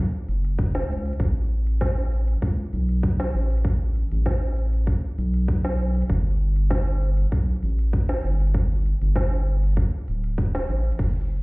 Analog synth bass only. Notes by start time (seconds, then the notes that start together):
0.28 F#1
0.89 C#2
1.20 A1
2.42 C#2
2.73 B1
3.34 A1
4.12 A1
5.18 B1
6.10 G1
7.32 B1
7.63 A1
8.24 G1
9.02 G1
10.08 D1
10.69 A1
10.99 F#1